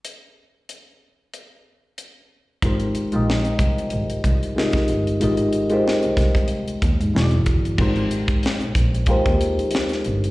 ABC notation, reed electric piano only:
X:1
M:4/4
L:1/16
Q:"Swing 16ths" 1/4=93
K:Ab
V:1 name="Reed electric piano"
z16 | [A,EFGBc]2 z [A,EFGBe]6 z3 [A,EFGBe]3 z | [A,EFGBe]2 z [A,EFGBc]6 z3 [=E,=E^F^Gd=d]3 z | [A,EFGBc]6 z2 [A,EFGBc]6 z2 |]